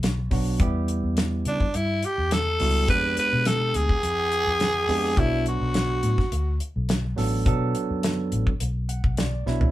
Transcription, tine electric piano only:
0.31 F#3 B3 D4 F#4
0.59 G3 B3 E4 G4
2.60 G3 B3 E4 F#4
2.88 G#3 B3 D4 G4
4.88 G#3 B3 D4 G4
5.17 F#3 B3 D4 F#4
7.16 F#3 B3 D4 A4
7.46 F#3 B3 D4 A4
8.89 F#5
9.18 D5
9.46 F#3 B3 D4 E4

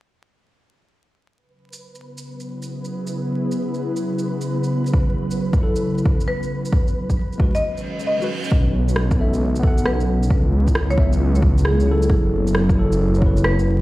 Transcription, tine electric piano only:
5.59 F#3 E4
5.63 A4
7.38 G#3 F#4
7.42 B4
8.20 G#3 F#4
8.24 B4
9.17 B3 A4
9.21 E5
9.60 B3 A4
9.67 F#5
10.96 C#3 B3
11.00 E5
11.83 F#3
11.87 E4
11.91 A4
12.75 F#3 E4 A4
13.18 F#3
13.22 E4 B4

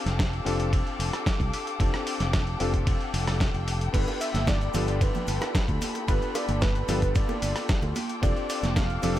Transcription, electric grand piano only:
Already playing: C4 D4 F4 G4 A4
0.45 C4 D4 F4 G4 A4
1.79 C4 D4 F4 G4 A4
2.60 C4 D4 F4 G4 A4
3.93 B3 D4 F4 G4 A4
4.74 B3 D4 F4 G4 A4
6.07 B3 D4 F4 G4 A4
6.88 B3 D4 F4 G4 A4
8.22 C4 D4 F4 G4 A4
9.02 C4 D4 F4 G4 A4

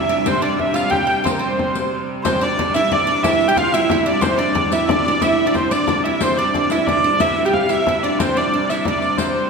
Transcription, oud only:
0.09 D4
0.26 C4
0.42 D4
0.74 F4
0.90 G4
1.07 D4
1.24 C4
1.39 C4
2.25 C4
2.41 D4
2.59 D4
2.76 E4
2.92 D4
3.07 D4
3.24 E4
3.49 G4
3.57 F4
3.74 E4
3.91 E4
4.06 D4
4.21 C4
4.39 D4
4.55 D4
4.72 E4
4.91 D4
5.08 D4
5.22 E4
5.47 D4
5.54 C4
5.71 D4
5.89 D4
6.05 E4
6.22 C4
6.39 D4
6.55 D4
6.72 E4
6.89 D4
7.04 D4
7.21 E4
7.46 G4
7.69 E4
7.89 E4
8.04 D4
8.20 C4
8.37 D4
8.54 D4
8.71 E4
8.88 D4
9.20 C4

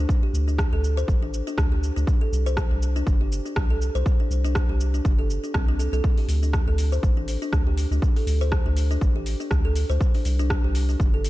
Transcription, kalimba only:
0.23 G4
0.48 D4
0.73 A4
0.97 C5
1.23 D4
1.47 D4
1.72 G4
1.96 D4
2.21 A4
2.46 C5
2.71 D4
2.96 D4
3.21 G4
3.46 D4
3.70 A4
3.95 C5
4.20 D4
4.45 D4
4.69 G4
4.94 D4
5.19 A4
5.44 D4
5.54 C4
5.68 D4
5.79 A4
5.93 A4
6.18 G4
6.43 D4
6.68 A4
6.92 C5
7.17 D4
7.42 D4
7.67 G4
7.92 D4
8.16 A4
8.41 C5
8.66 D4
8.91 D4
9.16 G4
9.40 D4
9.65 A4
9.89 C5
10.15 D4
10.39 D4
10.64 G4
10.89 D4
11.14 A4

